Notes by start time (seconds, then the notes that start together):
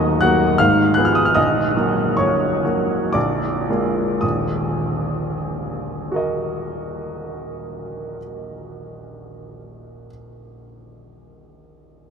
Already playing: D#1 D#2 F#3 A#3 F#4 A#4 D#5 A#5 D#6
0.21 F#3 A#3 F#4 F#5 F#6
0.58 G#1 G#2 F5 F6
0.94 F3 B3 F#6
0.99 G#4
1.05 F6
1.15 D#6
1.25 F6
1.35 A#0 A#1 D#5 D#6
1.76 F#3 A#3 F#4
2.17 A#0 A#1 C#5 C#6
2.64 F#3 A#3 F#4
3.13 A#0 A#1 D5 D6
3.69 G#3 A#3 F4
4.21 D#1 A#1 D#6
6.12 F#4 A#4
6.16 D#5